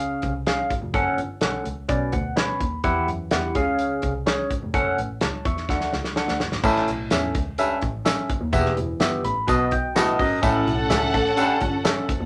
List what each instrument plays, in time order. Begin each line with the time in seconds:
Already playing: double bass C#2, tine electric piano C#3 C#4 G#4 F5
0.22 double bass C2, kick, closed hi-hat
0.46 tine electric piano C#4 G#4 F5, snare, closed hi-hat
0.70 double bass G#1, kick, closed hi-hat
0.82 double bass F1
0.94 double bass F#1, tine electric piano C#4 A4 F#5, kick, closed hi-hat
1.17 double bass G1, closed hi-hat
1.41 double bass B1, tine electric piano C#4 A4 F#5, snare, closed hi-hat
1.64 double bass C#2, closed hi-hat
1.88 double bass B1, tine electric piano B2 C#4 B4 D5, kick, closed hi-hat
2.12 double bass D2, tine electric piano F#5, kick, closed hi-hat
2.36 tine electric piano C#4 B4 C#5 B5, snare, closed hi-hat
2.60 double bass D#2, kick, closed hi-hat
2.84 double bass E2, tine electric piano E3 E4 G4 F#5, kick, closed hi-hat
3.07 double bass F#2, closed hi-hat
3.31 double bass E2, tine electric piano E4 G4 F#5, snare, closed hi-hat
3.55 double bass C#2, tine electric piano C#3 C#4 G#4 F5, kick, closed hi-hat
3.79 closed hi-hat
4.02 double bass C2, kick, closed hi-hat
4.26 tine electric piano C#4 G#4 C#5, snare, closed hi-hat
4.51 double bass G#1, kick, closed hi-hat
4.63 double bass F1
4.74 double bass F#1, tine electric piano C#4 A4 F#5, kick, closed hi-hat
4.98 double bass A1, closed hi-hat
5.21 double bass C#2, tine electric piano C#5 A5, snare, closed hi-hat
5.45 double bass E2, tine electric piano E5 C#6, kick, closed hi-hat
5.57 snare
5.69 double bass D2, tine electric piano D3 D4 A4 F#5, kick, snare
5.81 snare
5.93 double bass C#2, snare
6.04 snare
6.16 tine electric piano D4 A4 F#5, snare
6.28 double bass D2, snare
6.40 double bass G1, snare
6.52 double bass G#1, snare
6.64 double bass A1, baritone saxophone A2, tine electric piano A2 C#4 A4 E5, kick, crash, tambourine
6.76 snare
6.88 double bass B1, closed hi-hat
7.10 double bass E2, tine electric piano C#4 A4 E5, snare, closed hi-hat, tambourine
7.35 double bass C#2, kick, closed hi-hat
7.58 baritone saxophone G2, tine electric piano C#4 A4 E5, closed hi-hat, tambourine
7.81 double bass A1, kick, closed hi-hat
8.05 tine electric piano C#4 A4 E5, snare, closed hi-hat, tambourine
8.30 double bass F#1, kick, closed hi-hat
8.41 double bass D#2
8.53 double bass E1, baritone saxophone E2, tine electric piano E3 B3 G4 E5, kick, closed hi-hat, tambourine
8.65 snare
8.77 double bass F#1, closed hi-hat
9.00 double bass G1, tine electric piano B3 G4 E5, snare, closed hi-hat, tambourine
9.23 double bass A1, tine electric piano B5, closed hi-hat
9.47 double bass B1, baritone saxophone B2, tine electric piano B2 B3 F#4 D#5 A5, kick, closed hi-hat, tambourine
9.71 double bass B1, tine electric piano G5, kick, closed hi-hat
9.95 baritone saxophone A2, tine electric piano B3 F#4 D#5 F#5, snare, closed hi-hat, tambourine
10.19 double bass G#1, baritone saxophone F#2, tine electric piano D#5, kick, open hi-hat
10.42 double bass A1, tine electric piano A2 C#4 A4 E5, baritone saxophone A2, string section C#4 A4 F#5, kick, closed hi-hat, tambourine
10.66 double bass B1, closed hi-hat
10.89 double bass C#2, tine electric piano C#4 A4 E5, snare, closed hi-hat, tambourine
11.14 double bass A1, kick, closed hi-hat
11.37 baritone saxophone G2, tine electric piano C#4 A4 F#5, closed hi-hat, tambourine
11.61 double bass G1, kick, closed hi-hat
11.84 tine electric piano C#4 A4 E5, snare, closed hi-hat, tambourine
12.09 double bass F#1, kick, closed hi-hat
12.21 double bass D#2